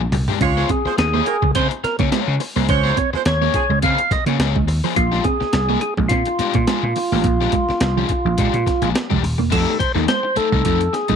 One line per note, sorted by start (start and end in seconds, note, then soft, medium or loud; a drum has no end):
0.12 0.25 C2 medium
0.12 muted overdriven electric guitar stroke soft
0.12 mid tom medium
0.12 open hi-hat medium
0.28 0.38 G#3 medium
0.28 0.38 D4 medium
0.28 0.37 G4 medium
0.28 floor tom medium
0.41 0.62 C#2 loud
0.41 0.64 G#3 loud
0.41 0.52 C#4 medium
0.41 0.64 F4 loud
0.41 0.71 F4 medium
0.41 0.64 C#5 loud
0.41 muted overdriven electric guitar stroke soft
0.41 kick loud
0.41 closed hi-hat medium
0.57 0.68 F4 medium
0.57 0.69 G#4 medium
0.57 0.68 C5 medium
0.57 muted clean electric guitar stroke soft
0.57 snare soft
0.69 0.81 C4 medium
0.69 0.96 G#4 medium
0.69 muted overdriven electric guitar stroke soft
0.69 kick medium
0.69 closed hi-hat medium
0.85 0.93 G#3 medium
0.85 0.93 F4 medium
0.85 0.93 C5 medium
0.85 muted slap bass stroke medium
0.85 muted overdriven electric guitar stroke soft
0.85 snare soft
0.98 1.20 D#2 medium
0.98 1.51 G#4 loud
0.98 muted overdriven electric guitar stroke soft
0.98 snare loud
0.98 closed hi-hat medium
1.14 1.23 A#3 medium
1.14 1.25 F4 medium
1.14 1.26 G#4 medium
1.14 1.27 C#5 medium
1.26 1.36 A#3 medium
1.26 1.36 G4 medium
1.26 1.36 A#4 medium
1.26 muted clean electric guitar stroke soft
1.26 muted overdriven electric guitar stroke soft
1.26 closed hi-hat medium
1.42 1.52 C#2 medium
1.42 1.51 G#3 medium
1.42 muted overdriven electric guitar stroke soft
1.42 kick medium
1.55 1.67 C#3 medium
1.55 1.66 C4 medium
1.55 1.69 F4 medium
1.55 1.70 G#4 medium
1.55 1.68 C5 loud
1.55 1.70 C5 medium
1.55 kick medium
1.55 closed hi-hat loud
1.71 muted clean electric guitar stroke soft
1.71 closed hi-hat medium
1.84 1.97 A#4 medium
1.84 muted overdriven electric guitar stroke soft
1.84 muted slap bass stroke soft
1.84 snare soft
1.84 closed hi-hat medium
1.99 2.09 C#3 loud
1.99 2.08 A#3 medium
1.99 2.09 F4 soft
1.99 2.09 G#4 medium
1.99 2.08 C#5 medium
1.99 kick loud
1.99 closed hi-hat soft
2.12 2.23 G#3 medium
2.12 2.33 F4 medium
2.12 2.33 G#4 loud
2.12 2.33 C#5 loud
2.12 snare loud
2.12 closed hi-hat medium
2.28 2.37 C#3 medium
2.40 muted clean electric guitar stroke soft
2.40 muted overdriven electric guitar stroke soft
2.40 open hi-hat medium
2.56 2.66 C2 medium
2.56 2.65 A#3 medium
2.56 2.66 F4 medium
2.56 2.66 G#4 medium
2.56 2.65 C5 medium
2.69 2.90 C#2 medium
2.69 2.91 G#3 loud
2.69 2.80 C#4 medium
2.69 2.92 F4 loud
2.69 2.98 C5 medium
2.69 2.92 C#5 loud
2.69 muted overdriven electric guitar stroke soft
2.69 kick loud
2.69 closed hi-hat medium
2.84 2.96 F4 medium
2.84 2.96 G#4 medium
2.84 2.95 C5 medium
2.84 muted clean electric guitar stroke soft
2.84 snare soft
2.97 3.08 C4 medium
2.97 3.10 C#5 medium
2.97 muted overdriven electric guitar stroke soft
2.97 kick medium
2.97 closed hi-hat medium
3.13 3.21 G#3 medium
3.13 3.21 F4 medium
3.13 3.21 C5 medium
3.13 muted overdriven electric guitar stroke soft
3.13 muted slap bass stroke soft
3.13 snare soft
3.25 3.47 D#2 loud
3.25 3.79 C#5 medium
3.25 muted overdriven electric guitar stroke soft
3.25 snare loud
3.25 closed hi-hat medium
3.42 3.51 A#3 medium
3.42 3.54 F4 medium
3.42 3.53 G#4 medium
3.42 3.53 C#5 medium
3.54 3.64 F3 medium
3.54 3.64 C#4 medium
3.54 3.64 G#4 medium
3.54 muted clean electric guitar stroke soft
3.54 muted overdriven electric guitar stroke soft
3.54 kick medium
3.54 closed hi-hat medium
3.69 3.79 C#2 medium
3.69 3.79 G#3 medium
3.69 muted overdriven electric guitar stroke soft
3.82 3.95 C#3 medium
3.82 3.94 C4 medium
3.82 3.97 F4 medium
3.82 3.97 G#4 medium
3.82 3.98 C5 medium
3.82 4.12 F5 loud
3.82 kick medium
3.82 closed hi-hat medium
3.98 closed hi-hat medium
4.11 4.25 D#5 medium
4.11 muted slap bass stroke soft
4.11 muted clean electric guitar stroke soft
4.11 muted overdriven electric guitar stroke soft
4.11 kick loud
4.11 snare soft
4.11 closed hi-hat medium
4.26 4.36 C#3 loud
4.26 4.36 A#3 medium
4.26 4.37 F4 medium
4.26 4.37 G#4 medium
4.26 4.36 C#5 medium
4.26 closed hi-hat medium
4.39 4.61 C#2 medium
4.39 4.54 F4 medium
4.39 4.54 G#4 medium
4.39 4.55 C#5 medium
4.39 snare loud
4.39 closed hi-hat medium
4.56 4.65 G#3 medium
4.56 kick medium
4.67 4.80 D#2 medium
4.67 muted overdriven electric guitar stroke soft
4.67 muted clean electric guitar stroke soft
4.67 open hi-hat medium
4.84 4.93 F3 medium
4.84 4.94 F4 medium
4.84 4.93 G#4 medium
4.84 4.93 C5 medium
4.96 5.18 A#1 loud
4.96 5.08 A#3 medium
4.96 5.26 F4 loud
4.96 muted overdriven electric guitar stroke medium
4.96 kick loud
4.96 closed hi-hat medium
5.12 5.24 G#3 medium
5.12 5.23 D4 medium
5.12 5.23 G4 medium
5.12 muted clean electric guitar stroke medium
5.12 snare soft
5.24 5.36 C4 medium
5.24 5.80 G#4 loud
5.24 muted overdriven electric guitar stroke medium
5.24 kick medium
5.24 closed hi-hat medium
5.40 muted overdriven electric guitar stroke soft
5.40 muted slap bass stroke medium
5.40 snare soft
5.53 5.75 C2 loud
5.53 muted overdriven electric guitar stroke soft
5.53 snare loud
5.53 closed hi-hat medium
5.69 5.81 G#3 medium
5.69 5.78 A#3 medium
5.69 5.81 D4 medium
5.69 5.80 G#4 medium
5.81 5.94 G#4 medium
5.81 muted overdriven electric guitar stroke soft
5.81 muted clean electric guitar stroke soft
5.81 closed hi-hat medium
5.97 6.07 A#1 medium
5.97 6.07 G#3 medium
5.97 muted overdriven electric guitar stroke soft
5.97 kick loud
6.08 6.22 A#2 loud
6.08 6.22 C4 medium
6.08 8.90 F4 medium
6.08 muted overdriven electric guitar stroke soft
6.08 kick medium
6.08 closed hi-hat loud
6.25 muted overdriven electric guitar stroke soft
6.25 muted clean electric guitar stroke soft
6.25 closed hi-hat medium
6.39 6.53 G#3 medium
6.39 6.54 D4 medium
6.39 6.54 G4 medium
6.39 muted slap bass stroke medium
6.39 snare soft
6.39 closed hi-hat medium
6.54 6.64 A#2 medium
6.54 6.64 A#3 medium
6.54 muted overdriven electric guitar stroke soft
6.54 kick loud
6.54 closed hi-hat medium
6.67 6.79 G#3 medium
6.67 6.82 G#3 medium
6.67 6.82 D4 medium
6.67 6.82 G#4 loud
6.67 snare loud
6.67 closed hi-hat loud
6.83 6.93 A#2 loud
6.96 muted clean electric guitar stroke soft
6.96 muted overdriven electric guitar stroke soft
6.96 open hi-hat medium
7.12 7.24 A1 medium
7.12 7.21 G#3 medium
7.12 7.21 A#3 medium
7.12 7.21 D4 medium
7.12 7.21 G4 medium
7.24 7.46 A#1 loud
7.24 7.36 A#3 medium
7.24 muted overdriven electric guitar stroke soft
7.24 kick loud
7.24 closed hi-hat medium
7.40 7.52 G#3 medium
7.40 7.52 D4 medium
7.40 7.52 G4 medium
7.40 muted clean electric guitar stroke soft
7.40 snare soft
7.52 7.64 G#3 medium
7.52 muted overdriven electric guitar stroke soft
7.52 kick medium
7.52 closed hi-hat medium
7.69 muted slap bass stroke soft
7.69 muted overdriven electric guitar stroke medium
7.69 snare soft
7.80 8.02 C2 medium
7.80 muted overdriven electric guitar stroke soft
7.80 snare loud
7.80 closed hi-hat medium
7.97 8.06 F3 medium
7.97 8.10 G#3 medium
7.97 8.10 D4 medium
7.97 8.12 G#4 medium
8.09 muted clean electric guitar stroke soft
8.09 muted overdriven electric guitar stroke soft
8.09 kick medium
8.09 closed hi-hat medium
8.25 8.35 A#1 medium
8.25 8.34 F3 medium
8.25 muted overdriven electric guitar stroke soft
8.38 8.50 A#2 loud
8.38 8.52 G#3 medium
8.38 8.49 G#3 medium
8.38 8.53 D4 medium
8.38 8.53 G4 medium
8.38 kick medium
8.38 closed hi-hat loud
8.54 8.63 A#2 loud
8.54 closed hi-hat medium
8.67 muted clean electric guitar stroke soft
8.67 muted overdriven electric guitar stroke medium
8.67 kick medium
8.67 snare soft
8.67 closed hi-hat medium
8.82 8.91 A#1 medium
8.82 8.91 F3 medium
8.82 8.92 G#3 medium
8.82 8.91 D4 medium
8.82 8.91 G#4 medium
8.82 closed hi-hat medium
8.94 muted overdriven electric guitar stroke soft
8.94 snare loud
8.94 closed hi-hat medium
9.10 9.20 F1 medium
9.10 9.19 G#3 medium
9.10 9.22 G#3 medium
9.10 9.22 D4 medium
9.10 9.21 G4 medium
9.10 kick medium
9.23 9.35 D#1 medium
9.23 muted overdriven electric guitar stroke soft
9.23 muted clean electric guitar stroke soft
9.23 open hi-hat medium
9.38 9.48 E1 medium
9.38 9.48 A#3 medium
9.38 muted overdriven electric guitar stroke soft
9.50 9.64 F2 medium
9.50 9.63 F3 medium
9.50 9.72 A3 medium
9.50 9.72 D#4 loud
9.50 9.72 G4 loud
9.50 9.78 A4 medium
9.50 kick loud
9.50 closed hi-hat medium
9.50 crash loud
9.69 snare soft
9.79 9.92 C5 medium
9.79 muted overdriven electric guitar stroke soft
9.79 muted clean electric guitar stroke soft
9.79 kick medium
9.79 closed hi-hat medium
9.95 10.05 D#2 loud
9.95 10.05 A3 medium
9.95 10.04 D#4 medium
9.95 10.04 A4 medium
9.95 snare soft
10.07 10.19 G#3 medium
10.07 10.38 C5 loud
10.07 muted overdriven electric guitar stroke soft
10.07 snare loud
10.07 closed hi-hat loud
10.23 muted overdriven electric guitar stroke soft
10.36 10.47 A3 medium
10.36 10.48 D#4 medium
10.36 10.95 A4 medium
10.36 10.48 A4 medium
10.36 muted clean electric guitar stroke soft
10.36 muted slap bass stroke soft
10.36 closed hi-hat medium
10.52 10.62 C2 medium
10.52 10.61 A3 medium
10.52 10.62 A3 soft
10.52 10.62 D#4 medium
10.52 10.61 A4 medium
10.52 kick medium
10.65 10.87 F2 loud
10.65 10.76 F3 medium
10.65 10.79 A3 medium
10.65 10.79 D#4 medium
10.65 10.80 A4 medium
10.65 kick medium
10.65 closed hi-hat medium
10.81 muted clean electric guitar stroke soft
10.81 closed hi-hat medium
10.93 11.16 G#4 medium
10.93 muted overdriven electric guitar stroke soft
10.93 snare soft
10.93 closed hi-hat medium
11.08 11.16 F2 medium
11.08 11.16 G#3 medium
11.08 11.16 A3 medium
11.08 11.16 D#4 medium
11.08 11.16 A4 medium
11.08 kick loud
11.08 closed hi-hat medium